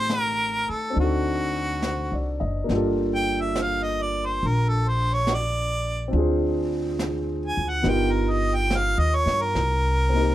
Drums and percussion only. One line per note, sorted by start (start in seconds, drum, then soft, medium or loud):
0.10 snare soft
0.10 hi-hat pedal soft
0.95 brush sweep soft
1.82 snare soft
1.82 hi-hat pedal soft
2.69 brush sweep soft
2.69 snare soft
3.56 snare soft
3.56 hi-hat pedal soft
4.41 brush sweep soft
5.27 snare soft
5.27 hi-hat pedal soft
6.13 brush sweep soft
6.99 snare soft
6.99 hi-hat pedal medium
7.84 brush sweep soft
7.84 snare soft
8.71 snare soft
8.71 hi-hat pedal soft
9.27 snare soft
9.55 brush sweep soft
9.55 snare soft